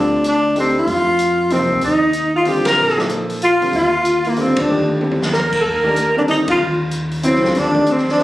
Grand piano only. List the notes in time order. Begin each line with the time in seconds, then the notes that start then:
Already playing: D3 G3 C4 F4
0.55 A3 D4 D#4 G4
1.50 C3 F3 A#3 D#4
2.46 D3 G3 C4 F4
2.97 F3 A#3 D#4 A4
3.61 D3 G3 C4 F4
4.36 D3 G3 C4 F4
4.69 D#3 A3 D4 G4
5.01 D3 G3 C4 G4
5.84 D#3 A3 D4 G4
6.16 D3 G3 C4 G4
7.23 C#3 F#3 B3 E4
7.43 D3 G3 C4 F4
7.74 D#3 A3 D4 G4
8.18 D3 G3 C4 F4